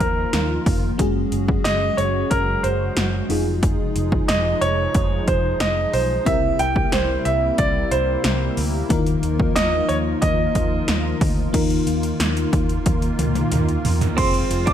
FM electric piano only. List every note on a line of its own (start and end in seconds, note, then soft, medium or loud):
0.00 1.01 D#3 medium
0.00 0.95 A#3 medium
0.00 0.95 D#4 medium
0.00 0.96 F4 medium
0.00 0.96 A#4 medium
0.98 3.25 G#3 medium
0.98 3.26 C#4 medium
0.98 3.26 F#4 medium
0.98 3.27 G#4 medium
3.29 5.89 C3 medium
3.29 5.89 D#4 medium
3.29 5.90 F4 medium
3.29 5.90 G#4 medium
6.25 7.21 C3 medium
6.25 8.86 C4 medium
6.25 8.86 E4 medium
6.25 8.87 G4 medium
6.25 8.87 A#4 medium
8.89 9.85 D#3 medium
8.89 11.50 A#3 medium
8.89 11.50 D#4 medium
8.89 11.50 F4 medium
8.89 11.51 A#4 medium
11.53 12.49 D#3 medium
11.53 14.13 A#3 medium
11.53 14.14 D#4 medium
11.53 14.14 F4 medium
11.53 14.14 A#4 medium
14.17 14.73 C4 medium
14.17 14.73 F4 medium
14.17 14.73 G#4 medium
14.17 14.73 C5 medium